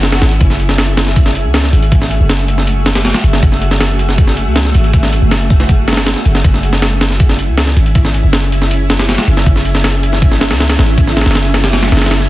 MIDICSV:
0, 0, Header, 1, 4, 480
1, 0, Start_track
1, 0, Key_signature, 3, "minor"
1, 0, Tempo, 377358
1, 519, Time_signature, 4, 2, 24, 8
1, 15637, End_track
2, 0, Start_track
2, 0, Title_t, "808-style bass"
2, 0, Program_c, 0, 38
2, 0, Note_on_c, 0, 30, 93
2, 259, Note_off_c, 0, 30, 0
2, 275, Note_on_c, 0, 32, 95
2, 493, Note_off_c, 0, 32, 0
2, 519, Note_on_c, 0, 30, 102
2, 1838, Note_on_c, 0, 37, 98
2, 1857, Note_off_c, 0, 30, 0
2, 2179, Note_off_c, 0, 37, 0
2, 2196, Note_on_c, 0, 32, 92
2, 2779, Note_off_c, 0, 32, 0
2, 2801, Note_on_c, 0, 30, 85
2, 3981, Note_off_c, 0, 30, 0
2, 4117, Note_on_c, 0, 30, 90
2, 4334, Note_off_c, 0, 30, 0
2, 4358, Note_on_c, 0, 30, 100
2, 5677, Note_on_c, 0, 37, 100
2, 5696, Note_off_c, 0, 30, 0
2, 6018, Note_off_c, 0, 37, 0
2, 6039, Note_on_c, 0, 32, 92
2, 6621, Note_off_c, 0, 32, 0
2, 6639, Note_on_c, 0, 30, 85
2, 7820, Note_off_c, 0, 30, 0
2, 7956, Note_on_c, 0, 30, 86
2, 8174, Note_off_c, 0, 30, 0
2, 8198, Note_on_c, 0, 30, 101
2, 9517, Note_on_c, 0, 37, 96
2, 9536, Note_off_c, 0, 30, 0
2, 9859, Note_off_c, 0, 37, 0
2, 9876, Note_on_c, 0, 32, 96
2, 10459, Note_off_c, 0, 32, 0
2, 10481, Note_on_c, 0, 30, 81
2, 11661, Note_off_c, 0, 30, 0
2, 11797, Note_on_c, 0, 30, 89
2, 12014, Note_off_c, 0, 30, 0
2, 12036, Note_on_c, 0, 30, 103
2, 13360, Note_on_c, 0, 37, 95
2, 13379, Note_off_c, 0, 30, 0
2, 13700, Note_off_c, 0, 37, 0
2, 13722, Note_on_c, 0, 32, 93
2, 14302, Note_off_c, 0, 32, 0
2, 14322, Note_on_c, 0, 30, 80
2, 15153, Note_off_c, 0, 30, 0
2, 15161, Note_on_c, 0, 30, 94
2, 15621, Note_off_c, 0, 30, 0
2, 15637, End_track
3, 0, Start_track
3, 0, Title_t, "Swell"
3, 0, Program_c, 1, 103
3, 0, Note_on_c, 1, 60, 64
3, 520, Note_off_c, 1, 60, 0
3, 15637, End_track
4, 0, Start_track
4, 0, Title_t, "Drums"
4, 40, Note_on_c, 9, 38, 108
4, 40, Note_on_c, 9, 42, 82
4, 157, Note_off_c, 9, 38, 0
4, 157, Note_off_c, 9, 42, 0
4, 157, Note_on_c, 9, 38, 110
4, 157, Note_on_c, 9, 42, 82
4, 274, Note_off_c, 9, 38, 0
4, 274, Note_off_c, 9, 42, 0
4, 274, Note_on_c, 9, 38, 107
4, 274, Note_on_c, 9, 42, 81
4, 399, Note_off_c, 9, 42, 0
4, 399, Note_on_c, 9, 42, 41
4, 402, Note_off_c, 9, 38, 0
4, 516, Note_off_c, 9, 42, 0
4, 516, Note_on_c, 9, 42, 89
4, 519, Note_on_c, 9, 36, 113
4, 639, Note_on_c, 9, 38, 42
4, 643, Note_off_c, 9, 42, 0
4, 646, Note_off_c, 9, 36, 0
4, 759, Note_on_c, 9, 42, 66
4, 766, Note_off_c, 9, 38, 0
4, 878, Note_on_c, 9, 38, 58
4, 886, Note_off_c, 9, 42, 0
4, 997, Note_off_c, 9, 38, 0
4, 997, Note_on_c, 9, 38, 118
4, 997, Note_on_c, 9, 42, 89
4, 1125, Note_off_c, 9, 38, 0
4, 1125, Note_off_c, 9, 42, 0
4, 1239, Note_on_c, 9, 38, 109
4, 1239, Note_on_c, 9, 42, 83
4, 1358, Note_off_c, 9, 38, 0
4, 1358, Note_on_c, 9, 38, 42
4, 1366, Note_off_c, 9, 42, 0
4, 1478, Note_on_c, 9, 42, 92
4, 1479, Note_on_c, 9, 36, 108
4, 1485, Note_off_c, 9, 38, 0
4, 1601, Note_on_c, 9, 38, 60
4, 1605, Note_off_c, 9, 42, 0
4, 1606, Note_off_c, 9, 36, 0
4, 1719, Note_on_c, 9, 42, 68
4, 1728, Note_off_c, 9, 38, 0
4, 1846, Note_off_c, 9, 42, 0
4, 1959, Note_on_c, 9, 38, 121
4, 1959, Note_on_c, 9, 42, 91
4, 2082, Note_off_c, 9, 38, 0
4, 2082, Note_on_c, 9, 38, 46
4, 2086, Note_off_c, 9, 42, 0
4, 2200, Note_on_c, 9, 42, 72
4, 2210, Note_off_c, 9, 38, 0
4, 2321, Note_off_c, 9, 42, 0
4, 2321, Note_on_c, 9, 42, 45
4, 2440, Note_off_c, 9, 42, 0
4, 2440, Note_on_c, 9, 36, 112
4, 2440, Note_on_c, 9, 42, 90
4, 2563, Note_on_c, 9, 38, 58
4, 2567, Note_off_c, 9, 36, 0
4, 2567, Note_off_c, 9, 42, 0
4, 2680, Note_on_c, 9, 42, 71
4, 2691, Note_off_c, 9, 38, 0
4, 2807, Note_off_c, 9, 42, 0
4, 2919, Note_on_c, 9, 38, 120
4, 2919, Note_on_c, 9, 42, 87
4, 3042, Note_off_c, 9, 42, 0
4, 3042, Note_on_c, 9, 42, 46
4, 3046, Note_off_c, 9, 38, 0
4, 3159, Note_off_c, 9, 42, 0
4, 3159, Note_on_c, 9, 42, 71
4, 3282, Note_on_c, 9, 38, 44
4, 3286, Note_off_c, 9, 42, 0
4, 3400, Note_on_c, 9, 42, 91
4, 3409, Note_off_c, 9, 38, 0
4, 3527, Note_off_c, 9, 42, 0
4, 3638, Note_on_c, 9, 38, 106
4, 3638, Note_on_c, 9, 42, 83
4, 3758, Note_off_c, 9, 38, 0
4, 3758, Note_off_c, 9, 42, 0
4, 3758, Note_on_c, 9, 38, 107
4, 3758, Note_on_c, 9, 42, 80
4, 3878, Note_off_c, 9, 38, 0
4, 3878, Note_off_c, 9, 42, 0
4, 3878, Note_on_c, 9, 38, 107
4, 3878, Note_on_c, 9, 42, 81
4, 3999, Note_off_c, 9, 38, 0
4, 3999, Note_off_c, 9, 42, 0
4, 3999, Note_on_c, 9, 38, 112
4, 3999, Note_on_c, 9, 42, 82
4, 4118, Note_off_c, 9, 42, 0
4, 4118, Note_on_c, 9, 42, 73
4, 4126, Note_off_c, 9, 38, 0
4, 4239, Note_on_c, 9, 38, 55
4, 4245, Note_off_c, 9, 42, 0
4, 4357, Note_on_c, 9, 42, 88
4, 4358, Note_on_c, 9, 36, 114
4, 4366, Note_off_c, 9, 38, 0
4, 4478, Note_on_c, 9, 38, 43
4, 4484, Note_off_c, 9, 42, 0
4, 4486, Note_off_c, 9, 36, 0
4, 4600, Note_on_c, 9, 42, 69
4, 4605, Note_off_c, 9, 38, 0
4, 4722, Note_on_c, 9, 38, 59
4, 4727, Note_off_c, 9, 42, 0
4, 4840, Note_off_c, 9, 38, 0
4, 4840, Note_on_c, 9, 38, 120
4, 4840, Note_on_c, 9, 42, 92
4, 4967, Note_off_c, 9, 38, 0
4, 4967, Note_off_c, 9, 42, 0
4, 5078, Note_on_c, 9, 42, 70
4, 5200, Note_on_c, 9, 38, 41
4, 5206, Note_off_c, 9, 42, 0
4, 5319, Note_on_c, 9, 36, 115
4, 5320, Note_on_c, 9, 42, 91
4, 5327, Note_off_c, 9, 38, 0
4, 5437, Note_on_c, 9, 38, 60
4, 5446, Note_off_c, 9, 36, 0
4, 5447, Note_off_c, 9, 42, 0
4, 5558, Note_on_c, 9, 42, 69
4, 5564, Note_off_c, 9, 38, 0
4, 5685, Note_off_c, 9, 42, 0
4, 5797, Note_on_c, 9, 38, 122
4, 5797, Note_on_c, 9, 42, 91
4, 5915, Note_off_c, 9, 38, 0
4, 5915, Note_on_c, 9, 38, 44
4, 5924, Note_off_c, 9, 42, 0
4, 6036, Note_on_c, 9, 42, 70
4, 6043, Note_off_c, 9, 38, 0
4, 6157, Note_off_c, 9, 42, 0
4, 6157, Note_on_c, 9, 42, 45
4, 6278, Note_off_c, 9, 42, 0
4, 6278, Note_on_c, 9, 36, 111
4, 6278, Note_on_c, 9, 42, 89
4, 6398, Note_on_c, 9, 38, 58
4, 6405, Note_off_c, 9, 36, 0
4, 6406, Note_off_c, 9, 42, 0
4, 6517, Note_on_c, 9, 42, 68
4, 6525, Note_off_c, 9, 38, 0
4, 6645, Note_off_c, 9, 42, 0
4, 6759, Note_on_c, 9, 38, 117
4, 6759, Note_on_c, 9, 42, 90
4, 6877, Note_off_c, 9, 42, 0
4, 6877, Note_on_c, 9, 42, 46
4, 6886, Note_off_c, 9, 38, 0
4, 6998, Note_off_c, 9, 42, 0
4, 6998, Note_on_c, 9, 36, 105
4, 6998, Note_on_c, 9, 42, 81
4, 7121, Note_on_c, 9, 38, 52
4, 7125, Note_off_c, 9, 36, 0
4, 7125, Note_off_c, 9, 42, 0
4, 7237, Note_on_c, 9, 42, 82
4, 7238, Note_on_c, 9, 36, 103
4, 7248, Note_off_c, 9, 38, 0
4, 7364, Note_off_c, 9, 42, 0
4, 7365, Note_off_c, 9, 36, 0
4, 7476, Note_on_c, 9, 38, 90
4, 7476, Note_on_c, 9, 42, 69
4, 7539, Note_off_c, 9, 38, 0
4, 7539, Note_off_c, 9, 42, 0
4, 7539, Note_on_c, 9, 38, 89
4, 7539, Note_on_c, 9, 42, 68
4, 7597, Note_off_c, 9, 38, 0
4, 7597, Note_off_c, 9, 42, 0
4, 7597, Note_on_c, 9, 38, 110
4, 7597, Note_on_c, 9, 42, 80
4, 7715, Note_off_c, 9, 38, 0
4, 7715, Note_off_c, 9, 42, 0
4, 7715, Note_on_c, 9, 38, 119
4, 7715, Note_on_c, 9, 42, 91
4, 7839, Note_off_c, 9, 38, 0
4, 7839, Note_on_c, 9, 38, 43
4, 7842, Note_off_c, 9, 42, 0
4, 7956, Note_on_c, 9, 42, 68
4, 7966, Note_off_c, 9, 38, 0
4, 8077, Note_on_c, 9, 38, 55
4, 8083, Note_off_c, 9, 42, 0
4, 8198, Note_on_c, 9, 36, 110
4, 8199, Note_on_c, 9, 42, 91
4, 8204, Note_off_c, 9, 38, 0
4, 8319, Note_on_c, 9, 38, 43
4, 8325, Note_off_c, 9, 36, 0
4, 8326, Note_off_c, 9, 42, 0
4, 8437, Note_on_c, 9, 42, 68
4, 8446, Note_off_c, 9, 38, 0
4, 8557, Note_on_c, 9, 38, 59
4, 8564, Note_off_c, 9, 42, 0
4, 8678, Note_off_c, 9, 38, 0
4, 8678, Note_on_c, 9, 38, 117
4, 8678, Note_on_c, 9, 42, 90
4, 8805, Note_off_c, 9, 38, 0
4, 8805, Note_off_c, 9, 42, 0
4, 8917, Note_on_c, 9, 38, 109
4, 8917, Note_on_c, 9, 42, 79
4, 9038, Note_off_c, 9, 38, 0
4, 9038, Note_on_c, 9, 38, 41
4, 9045, Note_off_c, 9, 42, 0
4, 9157, Note_on_c, 9, 36, 112
4, 9157, Note_on_c, 9, 42, 89
4, 9165, Note_off_c, 9, 38, 0
4, 9277, Note_on_c, 9, 38, 58
4, 9284, Note_off_c, 9, 36, 0
4, 9284, Note_off_c, 9, 42, 0
4, 9395, Note_on_c, 9, 42, 70
4, 9404, Note_off_c, 9, 38, 0
4, 9522, Note_off_c, 9, 42, 0
4, 9636, Note_on_c, 9, 38, 118
4, 9636, Note_on_c, 9, 42, 90
4, 9759, Note_off_c, 9, 38, 0
4, 9759, Note_on_c, 9, 38, 46
4, 9763, Note_off_c, 9, 42, 0
4, 9877, Note_on_c, 9, 42, 71
4, 9886, Note_off_c, 9, 38, 0
4, 9998, Note_off_c, 9, 42, 0
4, 9998, Note_on_c, 9, 42, 47
4, 10115, Note_off_c, 9, 42, 0
4, 10115, Note_on_c, 9, 42, 91
4, 10116, Note_on_c, 9, 36, 111
4, 10236, Note_on_c, 9, 38, 58
4, 10242, Note_off_c, 9, 42, 0
4, 10243, Note_off_c, 9, 36, 0
4, 10357, Note_on_c, 9, 42, 69
4, 10363, Note_off_c, 9, 38, 0
4, 10484, Note_off_c, 9, 42, 0
4, 10597, Note_on_c, 9, 38, 118
4, 10597, Note_on_c, 9, 42, 89
4, 10721, Note_off_c, 9, 42, 0
4, 10721, Note_on_c, 9, 42, 47
4, 10724, Note_off_c, 9, 38, 0
4, 10841, Note_off_c, 9, 42, 0
4, 10841, Note_on_c, 9, 42, 72
4, 10960, Note_on_c, 9, 38, 44
4, 10969, Note_off_c, 9, 42, 0
4, 11080, Note_on_c, 9, 42, 91
4, 11088, Note_off_c, 9, 38, 0
4, 11207, Note_off_c, 9, 42, 0
4, 11319, Note_on_c, 9, 38, 104
4, 11319, Note_on_c, 9, 42, 79
4, 11441, Note_off_c, 9, 38, 0
4, 11441, Note_off_c, 9, 42, 0
4, 11441, Note_on_c, 9, 38, 107
4, 11441, Note_on_c, 9, 42, 79
4, 11559, Note_off_c, 9, 38, 0
4, 11559, Note_off_c, 9, 42, 0
4, 11559, Note_on_c, 9, 38, 104
4, 11559, Note_on_c, 9, 42, 80
4, 11679, Note_off_c, 9, 38, 0
4, 11679, Note_off_c, 9, 42, 0
4, 11679, Note_on_c, 9, 38, 108
4, 11679, Note_on_c, 9, 42, 83
4, 11798, Note_off_c, 9, 42, 0
4, 11798, Note_on_c, 9, 42, 71
4, 11806, Note_off_c, 9, 38, 0
4, 11921, Note_on_c, 9, 38, 54
4, 11926, Note_off_c, 9, 42, 0
4, 12038, Note_on_c, 9, 36, 114
4, 12038, Note_on_c, 9, 42, 91
4, 12048, Note_off_c, 9, 38, 0
4, 12159, Note_on_c, 9, 38, 41
4, 12165, Note_off_c, 9, 36, 0
4, 12165, Note_off_c, 9, 42, 0
4, 12277, Note_on_c, 9, 42, 69
4, 12287, Note_off_c, 9, 38, 0
4, 12399, Note_on_c, 9, 38, 60
4, 12404, Note_off_c, 9, 42, 0
4, 12520, Note_off_c, 9, 38, 0
4, 12520, Note_on_c, 9, 38, 119
4, 12520, Note_on_c, 9, 42, 88
4, 12647, Note_off_c, 9, 38, 0
4, 12647, Note_off_c, 9, 42, 0
4, 12761, Note_on_c, 9, 42, 72
4, 12885, Note_on_c, 9, 38, 41
4, 12889, Note_off_c, 9, 42, 0
4, 13000, Note_on_c, 9, 36, 115
4, 13002, Note_on_c, 9, 42, 91
4, 13012, Note_off_c, 9, 38, 0
4, 13121, Note_on_c, 9, 38, 58
4, 13128, Note_off_c, 9, 36, 0
4, 13129, Note_off_c, 9, 42, 0
4, 13243, Note_off_c, 9, 38, 0
4, 13243, Note_on_c, 9, 38, 108
4, 13243, Note_on_c, 9, 42, 78
4, 13364, Note_off_c, 9, 38, 0
4, 13364, Note_off_c, 9, 42, 0
4, 13364, Note_on_c, 9, 38, 104
4, 13364, Note_on_c, 9, 42, 81
4, 13487, Note_off_c, 9, 38, 0
4, 13487, Note_off_c, 9, 42, 0
4, 13487, Note_on_c, 9, 38, 107
4, 13487, Note_on_c, 9, 42, 80
4, 13604, Note_off_c, 9, 38, 0
4, 13604, Note_off_c, 9, 42, 0
4, 13604, Note_on_c, 9, 38, 107
4, 13604, Note_on_c, 9, 42, 83
4, 13724, Note_off_c, 9, 38, 0
4, 13724, Note_off_c, 9, 42, 0
4, 13724, Note_on_c, 9, 38, 106
4, 13724, Note_on_c, 9, 42, 83
4, 13851, Note_off_c, 9, 38, 0
4, 13851, Note_off_c, 9, 42, 0
4, 13963, Note_on_c, 9, 36, 114
4, 13964, Note_on_c, 9, 42, 91
4, 14085, Note_on_c, 9, 38, 58
4, 14090, Note_off_c, 9, 36, 0
4, 14091, Note_off_c, 9, 42, 0
4, 14205, Note_off_c, 9, 38, 0
4, 14205, Note_on_c, 9, 38, 91
4, 14205, Note_on_c, 9, 42, 67
4, 14264, Note_off_c, 9, 38, 0
4, 14264, Note_off_c, 9, 42, 0
4, 14264, Note_on_c, 9, 38, 88
4, 14264, Note_on_c, 9, 42, 68
4, 14322, Note_off_c, 9, 38, 0
4, 14322, Note_off_c, 9, 42, 0
4, 14322, Note_on_c, 9, 38, 89
4, 14322, Note_on_c, 9, 42, 70
4, 14383, Note_off_c, 9, 38, 0
4, 14383, Note_off_c, 9, 42, 0
4, 14383, Note_on_c, 9, 38, 92
4, 14383, Note_on_c, 9, 42, 70
4, 14441, Note_off_c, 9, 38, 0
4, 14441, Note_off_c, 9, 42, 0
4, 14441, Note_on_c, 9, 38, 119
4, 14441, Note_on_c, 9, 42, 90
4, 14565, Note_off_c, 9, 42, 0
4, 14565, Note_on_c, 9, 42, 45
4, 14568, Note_off_c, 9, 38, 0
4, 14681, Note_off_c, 9, 42, 0
4, 14681, Note_on_c, 9, 38, 107
4, 14681, Note_on_c, 9, 42, 82
4, 14804, Note_off_c, 9, 38, 0
4, 14804, Note_off_c, 9, 42, 0
4, 14804, Note_on_c, 9, 38, 109
4, 14804, Note_on_c, 9, 42, 81
4, 14923, Note_off_c, 9, 38, 0
4, 14923, Note_off_c, 9, 42, 0
4, 14923, Note_on_c, 9, 38, 108
4, 14923, Note_on_c, 9, 42, 82
4, 15043, Note_off_c, 9, 38, 0
4, 15043, Note_off_c, 9, 42, 0
4, 15043, Note_on_c, 9, 38, 105
4, 15043, Note_on_c, 9, 42, 83
4, 15165, Note_off_c, 9, 38, 0
4, 15165, Note_off_c, 9, 42, 0
4, 15165, Note_on_c, 9, 38, 92
4, 15165, Note_on_c, 9, 42, 67
4, 15226, Note_off_c, 9, 38, 0
4, 15226, Note_off_c, 9, 42, 0
4, 15226, Note_on_c, 9, 38, 90
4, 15226, Note_on_c, 9, 42, 67
4, 15284, Note_off_c, 9, 38, 0
4, 15284, Note_off_c, 9, 42, 0
4, 15284, Note_on_c, 9, 38, 91
4, 15284, Note_on_c, 9, 42, 70
4, 15344, Note_off_c, 9, 38, 0
4, 15344, Note_off_c, 9, 42, 0
4, 15344, Note_on_c, 9, 38, 92
4, 15344, Note_on_c, 9, 42, 68
4, 15404, Note_off_c, 9, 38, 0
4, 15404, Note_off_c, 9, 42, 0
4, 15404, Note_on_c, 9, 38, 120
4, 15404, Note_on_c, 9, 42, 91
4, 15525, Note_off_c, 9, 38, 0
4, 15525, Note_on_c, 9, 38, 42
4, 15532, Note_off_c, 9, 42, 0
4, 15637, Note_off_c, 9, 38, 0
4, 15637, End_track
0, 0, End_of_file